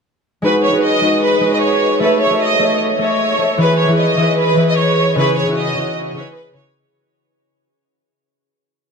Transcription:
0.42 harp G#3 D#4 F#4, violin section B4
0.47 harp B4
0.64 violin section C#5
0.72 harp G#3 D#4 F#4
0.77 harp B4
0.84 violin section D#5
1.01 harp G#3 D#4 F#4
1.06 harp B4
1.23 violin section B4
1.40 harp G#3 D#4 F#4
1.46 harp B4
1.54 violin section D#5
1.63 violin section C#5
2.00 harp A3 A4 C#5, violin section B4
2.05 harp E5
2.22 violin section C#5
2.30 harp A3 A4 C#5
2.35 harp E5
2.42 violin section D#5
2.59 harp A3 A4 C#5
2.64 harp E5
2.99 harp A3 A4 C#5, violin section C#5
3.04 harp E5
3.38 harp A3 A4 C#5
3.43 harp E5
3.58 harp E3 E4 G#4, violin section B4
3.63 harp B4
3.80 violin section C#5
3.88 harp E3 E4 G#4
3.93 harp B4
4.00 violin section D#5
4.17 harp E3 E4 G#4
4.22 harp B4
4.40 violin section B4
4.56 harp E3 E4 G#4
4.61 harp B4
4.69 violin section D#5
4.79 violin section C#5
5.15 harp C#3 C#4 E4, violin section B4
5.21 harp G#4
5.38 violin section C#5
5.46 harp C#3 C#4 E4
5.51 harp F#4
5.58 violin section D#5
5.75 harp C#3 C#4 E4
5.80 harp F#4
6.14 harp C#3 C#4 E4, violin section C#5
6.19 harp B4
6.36 violin section B4
6.54 harp C#3 C#4 E4, violin section C#5
6.59 harp F#4

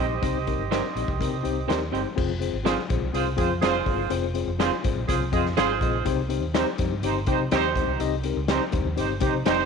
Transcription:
Already playing: fingered electric bass A#1, tine electric piano C4 D#4, horn section G4 C5 D#5
0.00 tine electric piano G4 D#5
0.22 fingered electric bass C2, tine electric piano C4 D#4 G4 C5, kick, closed hi-hat
0.47 tine electric piano C4 D#4 G4 A#4, kick, closed hi-hat
0.59 fingered electric bass G1
0.71 tine electric piano C4 D#4 G4 A#4, clean electric guitar C4 D#4 G4 C5, snare, closed hi-hat
0.95 fingered electric bass A#1, tine electric piano C4 D#4 G4 D#5, closed hi-hat
1.08 fingered electric bass C2, kick
1.19 fingered electric bass C3, tine electric piano C4 D#4 G4 A#4, kick, closed hi-hat
1.43 fingered electric bass C2, tine electric piano C4 D#4 G4 C5, closed hi-hat
1.68 fingered electric bass D#2, tine electric piano C4 D#4 G4 A#4, clean electric guitar C4 D#4 G4 C5, snare, closed hi-hat
1.92 fingered electric bass G1, tine electric piano C4 D#4 G4 C5, clean electric guitar C4 D#4 G4 C5, closed hi-hat
2.16 fingered electric bass F1, tine electric piano C4 F4 G#4 C5, kick, crash
2.39 tine electric piano C4 F4 G#4 C5, closed hi-hat
2.53 fingered electric bass G#1
2.64 tine electric piano C4 F4 G#4 C5, clean electric guitar C4 F4 G#4 C5, horn section F4 G#4 C5, snare, closed hi-hat
2.79 snare
2.89 fingered electric bass A#1, tine electric piano C4 F4 G#4 C5, kick, closed hi-hat
3.02 fingered electric bass C2
3.13 fingered electric bass C2, tine electric piano C4 F4 G#4 C5, horn section F4 G#4 C5, closed hi-hat
3.37 fingered electric bass F2, tine electric piano C4 F4 G#4 C5, horn section F4 G#4 C5, kick, closed hi-hat
3.61 fingered electric bass F1, tine electric piano C4 F4 G#4 C5, clean electric guitar C4 F4 G#4 C5, horn section F4 G#4 C5, snare, closed hi-hat
3.85 fingered electric bass G1, tine electric piano C4 F4 G#4 C5, kick, open hi-hat
4.10 fingered electric bass F1, tine electric piano C4 F4 G#4 C5, closed hi-hat
4.34 tine electric piano C4 F4 G#4 C5, closed hi-hat
4.47 fingered electric bass F1
4.58 tine electric piano C4 F4 G#4 C5, clean electric guitar C4 F4 G#4 C5, horn section F4 G#4 C5, snare, closed hi-hat
4.83 fingered electric bass G#1, tine electric piano C4 F4 G#4 C5, kick, closed hi-hat
4.96 fingered electric bass A#1
5.08 fingered electric bass C2, tine electric piano C4 F4 G#4 C5, horn section F4 G#4 C5, kick, closed hi-hat
5.32 fingered electric bass F2, tine electric piano C4 F4 G#4 D#5, horn section F4 G#4 C5, kick, closed hi-hat
5.46 snare
5.57 fingered electric bass G#1, clean electric guitar C4 F4 G#4 C5, tine electric piano C4 F4 G#4 C5, horn section F4 G#4 C5, snare, closed hi-hat
5.81 fingered electric bass A#1, tine electric piano C4 F4 G#4 D#5, kick, closed hi-hat
6.05 fingered electric bass C2, tine electric piano C4 D#4 G4 C5, kick, closed hi-hat
6.29 tine electric piano C4 D#4 G4 C5, closed hi-hat
6.42 fingered electric bass D#2
6.54 tine electric piano C4 D#4 G4 C5, clean electric guitar C4 D#4 G4 C5, horn section D#4 G4 C5, snare, closed hi-hat
6.78 fingered electric bass F2, tine electric piano C4 D#4 G4 C5, kick, closed hi-hat
6.91 fingered electric bass G2
7.03 fingered electric bass G1, tine electric piano C4 D#4 G4 C5, horn section D#4 G4 C5, closed hi-hat
7.26 fingered electric bass C3, tine electric piano C4 D#4 G4 C5, horn section D#4 G4 C5, kick, closed hi-hat
7.51 fingered electric bass D#2, tine electric piano C4 D#4 G4 C5, clean electric guitar C4 D#4 G4 C5, horn section D#4 G4 C5, snare, closed hi-hat
7.76 tine electric piano C4 D#4 G4 C5, kick, closed hi-hat
7.88 fingered electric bass C2
8.00 fingered electric bass C2, tine electric piano C4 D#4 G4 D#5, closed hi-hat
8.24 tine electric piano C4 D#4 G4 A#4, closed hi-hat
8.37 fingered electric bass C#2
8.48 tine electric piano C4 D#4 G4 C5, clean electric guitar C4 D#4 G4 C5, horn section D#4 G4 C5, snare, closed hi-hat
8.72 fingered electric bass D#2, tine electric piano C4 D#4 G4 C5, kick, closed hi-hat
8.85 fingered electric bass D#2
8.96 fingered electric bass G1, tine electric piano C4 D#4 G4 C5, horn section D#4 G4 C5, closed hi-hat
9.20 fingered electric bass C3, tine electric piano C4 D#4 G4 C5, horn section D#4 G4 C5, kick, closed hi-hat
9.46 fingered electric bass F1, tine electric piano C4 D#4 G4 D#5, clean electric guitar C4 D#4 G4 C5, horn section D#4 G4 C5, snare, closed hi-hat

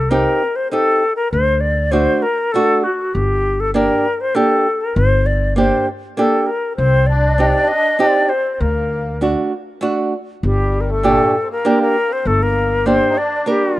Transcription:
Already playing: upright bass C2, flute A4
0.10 nylon-string guitar C4 D#4 G4, flute A#4
0.56 flute C5
0.71 nylon-string guitar C4 D#4 G4, flute A4
1.16 flute A#4
1.32 upright bass D2, flute C5
1.61 flute D5
1.91 nylon-string guitar A3 D4 F#4, flute C5
2.22 flute A#4
2.52 nylon-string guitar A3 D4 F#4, flute A4
2.84 flute F#4
3.14 upright bass G1, flute G4
3.60 flute A4
3.74 nylon-string guitar A#3 D4 G4, flute A#4
4.21 flute C5
4.35 nylon-string guitar A#3 D4 G4, flute A4
4.81 flute A#4
4.95 upright bass G1, flute C5
5.26 flute D5
5.56 nylon-string guitar A#3 D4 G4, flute C5
6.17 nylon-string guitar A#3 D4 G4, flute A4
6.46 flute A#4
6.76 upright bass C2, accordion C4, flute C5
7.07 accordion D4, flute D5
7.38 nylon-string guitar C4 D#4 G4
7.55 accordion D4
7.68 flute D#5
7.98 nylon-string guitar C4 D#4 G4, accordion D4, flute D5
8.08 accordion C4
8.16 accordion D4
8.24 accordion D4
8.29 accordion C4, flute C5
8.54 accordion C4, flute C5
8.60 upright bass D2, accordion A#3, flute A#4
9.21 nylon-string guitar A3 D4 F#4
9.81 nylon-string guitar A3 D4 F#4
10.43 upright bass G1, accordion G3, flute G4
10.81 flute A#4
10.89 accordion A3, flute A4
11.03 nylon-string guitar A#2 D4 G4
11.41 accordion C4
11.49 accordion A#3, flute A#4
11.65 nylon-string guitar A#3 D4 G4
11.72 accordion C4
11.79 accordion A#3, flute A#4
12.08 accordion C4
12.13 flute C5
12.24 upright bass G1, accordion A3, flute A4
12.40 accordion A#3, flute A#4
12.85 nylon-string guitar A#3 D4 G4, accordion C4, flute C5
13.09 accordion D#4
13.16 accordion D4, flute D5
13.46 accordion G3, nylon-string guitar A#3 D4 A#4, flute G4

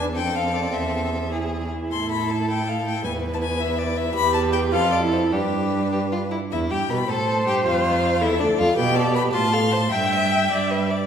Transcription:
Already playing: cello E2, viola D4, violin B4
0.16 cello F2, viola C4, violin A4 G5
0.35 violin F5
0.54 violin D5
0.74 cello E2, violin E5
1.32 viola E4, violin G#4
1.92 cello A2, violin A4 C6
2.12 violin B5
2.31 violin A5
2.50 violin G5
2.69 violin F5
2.87 violin G5
3.04 cello E2, viola E4, violin B4 G#5
3.34 violin A5
3.43 violin G#5
3.61 violin E5
3.79 violin D5
3.97 violin E5
4.15 cello E2, viola G4, violin B4 B5
4.34 violin A5
4.53 violin G5
4.72 cello F2, viola F4, violin A4 F5
4.92 violin D5
5.02 viola E4
5.13 violin C5
5.31 cello G2, viola D4, violin G4 B4
5.92 violin G4
6.12 violin F4
6.31 violin E4
6.51 cello E2, violin E4 E5
6.71 cello G2, violin G4 G5
6.89 cello B2, violin B4 B5
7.08 cello A2, violin A4 A5, viola C5
7.47 cello G2, violin G4 G5
7.66 cello F2, violin F4 F5
8.21 cello E2, violin E4 E5, viola A4
8.39 cello D2, violin D4 D5
8.58 cello F2, violin F4 F5
8.76 cello B2, viola G4, violin B4 G5
8.95 violin D5 A5
9.14 violin B4 B5
9.33 cello A2, viola F4, violin A5 C6
9.53 viola A4, violin F5
9.71 viola C5, violin A5
9.91 cello G2, viola E5, violin G5
10.12 violin E5
10.31 violin G5
10.51 cello G2, violin D5
10.71 violin B4
10.90 violin D5

